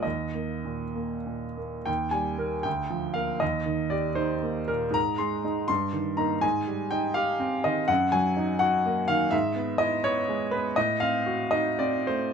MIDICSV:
0, 0, Header, 1, 2, 480
1, 0, Start_track
1, 0, Tempo, 610376
1, 35, Time_signature, 6, 3, 24, 8
1, 1474, Tempo, 523104
1, 1954, Tempo, 508475
1, 4834, Tempo, 489396
1, 7234, Tempo, 480384
1, 10594, Tempo, 533808
1, 11074, Tempo, 589391
1, 11515, End_track
2, 0, Start_track
2, 0, Title_t, "Grand piano"
2, 0, Program_c, 0, 0
2, 0, Control_c, 0, 64, 127
2, 20, Note_on_c, 0, 75, 54
2, 30, Note_on_c, 0, 39, 41
2, 50, Control_c, 0, 64, 0
2, 205, Control_c, 0, 64, 127
2, 273, Note_on_c, 0, 58, 31
2, 511, Note_on_c, 0, 46, 30
2, 662, Note_off_c, 0, 58, 0
2, 753, Note_on_c, 0, 58, 33
2, 902, Note_off_c, 0, 46, 0
2, 994, Note_on_c, 0, 46, 31
2, 1144, Note_off_c, 0, 58, 0
2, 1237, Note_on_c, 0, 58, 30
2, 1240, Note_off_c, 0, 75, 0
2, 1385, Note_off_c, 0, 46, 0
2, 1441, Note_off_c, 0, 39, 0
2, 1459, Note_on_c, 0, 79, 68
2, 1467, Note_on_c, 0, 39, 49
2, 1469, Note_off_c, 0, 58, 0
2, 1490, Control_c, 0, 64, 0
2, 1652, Control_c, 0, 64, 127
2, 1691, Note_on_c, 0, 80, 60
2, 1704, Note_on_c, 0, 55, 35
2, 1706, Note_off_c, 0, 79, 0
2, 1938, Note_on_c, 0, 58, 34
2, 1944, Note_on_c, 0, 70, 39
2, 2096, Note_off_c, 0, 55, 0
2, 2166, Note_off_c, 0, 58, 0
2, 2169, Note_off_c, 0, 70, 0
2, 2172, Note_off_c, 0, 39, 0
2, 2175, Note_on_c, 0, 79, 69
2, 2187, Note_off_c, 0, 80, 0
2, 2194, Note_on_c, 0, 38, 46
2, 2216, Control_c, 0, 64, 0
2, 2340, Control_c, 0, 64, 127
2, 2431, Note_on_c, 0, 53, 38
2, 2652, Note_on_c, 0, 77, 66
2, 2663, Note_off_c, 0, 79, 0
2, 2664, Note_on_c, 0, 58, 35
2, 2668, Note_on_c, 0, 70, 38
2, 2813, Note_off_c, 0, 53, 0
2, 2883, Note_off_c, 0, 58, 0
2, 2884, Note_off_c, 0, 70, 0
2, 2888, Note_off_c, 0, 38, 0
2, 2900, Note_off_c, 0, 77, 0
2, 2900, Note_on_c, 0, 75, 68
2, 2908, Note_on_c, 0, 39, 49
2, 2927, Control_c, 0, 64, 0
2, 3064, Control_c, 0, 64, 127
2, 3145, Note_on_c, 0, 51, 34
2, 3372, Note_on_c, 0, 74, 64
2, 3382, Note_on_c, 0, 67, 39
2, 3389, Note_off_c, 0, 75, 0
2, 3539, Note_off_c, 0, 51, 0
2, 3612, Note_on_c, 0, 72, 65
2, 3616, Note_on_c, 0, 63, 45
2, 3630, Note_off_c, 0, 74, 0
2, 3783, Note_off_c, 0, 67, 0
2, 3869, Note_on_c, 0, 58, 38
2, 4021, Note_off_c, 0, 63, 0
2, 4107, Note_on_c, 0, 70, 66
2, 4114, Note_on_c, 0, 46, 36
2, 4116, Note_off_c, 0, 72, 0
2, 4264, Note_off_c, 0, 58, 0
2, 4320, Note_on_c, 0, 44, 54
2, 4328, Note_off_c, 0, 39, 0
2, 4353, Note_on_c, 0, 82, 85
2, 4356, Note_off_c, 0, 70, 0
2, 4360, Note_off_c, 0, 46, 0
2, 4385, Control_c, 0, 64, 0
2, 4530, Control_c, 0, 64, 127
2, 4582, Note_on_c, 0, 84, 62
2, 4592, Note_on_c, 0, 56, 39
2, 4594, Note_off_c, 0, 82, 0
2, 4816, Note_off_c, 0, 56, 0
2, 4830, Note_on_c, 0, 56, 35
2, 4832, Note_on_c, 0, 63, 40
2, 5029, Note_off_c, 0, 44, 0
2, 5045, Note_off_c, 0, 84, 0
2, 5049, Note_off_c, 0, 56, 0
2, 5051, Note_off_c, 0, 63, 0
2, 5059, Note_on_c, 0, 84, 85
2, 5073, Note_on_c, 0, 43, 49
2, 5091, Control_c, 0, 64, 0
2, 5237, Control_c, 0, 64, 127
2, 5306, Note_on_c, 0, 51, 41
2, 5542, Note_on_c, 0, 82, 62
2, 5549, Note_off_c, 0, 84, 0
2, 5549, Note_on_c, 0, 58, 41
2, 5551, Note_on_c, 0, 63, 44
2, 5697, Note_off_c, 0, 51, 0
2, 5770, Note_off_c, 0, 58, 0
2, 5771, Note_off_c, 0, 63, 0
2, 5776, Note_off_c, 0, 43, 0
2, 5782, Note_on_c, 0, 80, 76
2, 5791, Note_off_c, 0, 82, 0
2, 5792, Note_on_c, 0, 44, 57
2, 5814, Control_c, 0, 64, 0
2, 5948, Control_c, 0, 64, 127
2, 6037, Note_on_c, 0, 55, 40
2, 6264, Note_on_c, 0, 79, 74
2, 6272, Note_off_c, 0, 80, 0
2, 6277, Note_on_c, 0, 63, 47
2, 6422, Note_off_c, 0, 55, 0
2, 6496, Note_on_c, 0, 77, 81
2, 6507, Note_on_c, 0, 67, 49
2, 6510, Note_off_c, 0, 79, 0
2, 6658, Note_off_c, 0, 63, 0
2, 6746, Note_on_c, 0, 60, 44
2, 6892, Note_off_c, 0, 67, 0
2, 6982, Note_off_c, 0, 77, 0
2, 6985, Note_on_c, 0, 75, 72
2, 6994, Note_on_c, 0, 51, 45
2, 7133, Note_off_c, 0, 60, 0
2, 7191, Note_off_c, 0, 44, 0
2, 7216, Note_on_c, 0, 78, 86
2, 7221, Note_on_c, 0, 42, 59
2, 7229, Note_off_c, 0, 75, 0
2, 7234, Note_off_c, 0, 51, 0
2, 7250, Control_c, 0, 64, 0
2, 7387, Control_c, 0, 64, 127
2, 7458, Note_on_c, 0, 80, 80
2, 7466, Note_off_c, 0, 78, 0
2, 7467, Note_on_c, 0, 54, 43
2, 7705, Note_on_c, 0, 63, 48
2, 7851, Note_off_c, 0, 54, 0
2, 7930, Note_on_c, 0, 78, 82
2, 7942, Note_off_c, 0, 80, 0
2, 7942, Note_on_c, 0, 66, 51
2, 8092, Note_off_c, 0, 63, 0
2, 8196, Note_on_c, 0, 58, 48
2, 8333, Note_off_c, 0, 66, 0
2, 8415, Note_on_c, 0, 77, 85
2, 8421, Note_off_c, 0, 78, 0
2, 8430, Note_on_c, 0, 51, 45
2, 8575, Note_off_c, 0, 58, 0
2, 8620, Note_off_c, 0, 42, 0
2, 8644, Note_on_c, 0, 76, 83
2, 8658, Note_off_c, 0, 77, 0
2, 8660, Note_on_c, 0, 44, 65
2, 8666, Note_off_c, 0, 51, 0
2, 8684, Control_c, 0, 64, 0
2, 8839, Control_c, 0, 64, 127
2, 8891, Note_on_c, 0, 59, 45
2, 9120, Note_on_c, 0, 75, 81
2, 9131, Note_off_c, 0, 76, 0
2, 9133, Note_on_c, 0, 64, 50
2, 9280, Note_off_c, 0, 59, 0
2, 9370, Note_off_c, 0, 75, 0
2, 9377, Note_on_c, 0, 73, 86
2, 9386, Note_on_c, 0, 59, 51
2, 9519, Note_off_c, 0, 64, 0
2, 9627, Note_on_c, 0, 56, 47
2, 9765, Note_off_c, 0, 59, 0
2, 9851, Note_on_c, 0, 71, 77
2, 9856, Note_off_c, 0, 73, 0
2, 9862, Note_on_c, 0, 59, 49
2, 10005, Note_off_c, 0, 56, 0
2, 10054, Note_off_c, 0, 44, 0
2, 10094, Note_off_c, 0, 71, 0
2, 10098, Note_on_c, 0, 75, 82
2, 10099, Note_off_c, 0, 59, 0
2, 10110, Note_on_c, 0, 45, 57
2, 10115, Control_c, 0, 64, 0
2, 10273, Control_c, 0, 64, 127
2, 10338, Note_on_c, 0, 77, 76
2, 10343, Note_off_c, 0, 75, 0
2, 10356, Note_on_c, 0, 60, 43
2, 10598, Note_on_c, 0, 66, 46
2, 10741, Note_off_c, 0, 60, 0
2, 10819, Note_on_c, 0, 75, 75
2, 10827, Note_on_c, 0, 63, 47
2, 10828, Note_off_c, 0, 77, 0
2, 10976, Note_off_c, 0, 66, 0
2, 11069, Note_off_c, 0, 75, 0
2, 11071, Note_on_c, 0, 74, 71
2, 11079, Note_on_c, 0, 60, 45
2, 11213, Note_off_c, 0, 63, 0
2, 11301, Note_on_c, 0, 72, 69
2, 11308, Note_off_c, 0, 74, 0
2, 11312, Note_on_c, 0, 57, 39
2, 11460, Note_off_c, 0, 60, 0
2, 11515, Note_off_c, 0, 45, 0
2, 11515, Note_off_c, 0, 57, 0
2, 11515, Note_off_c, 0, 72, 0
2, 11515, End_track
0, 0, End_of_file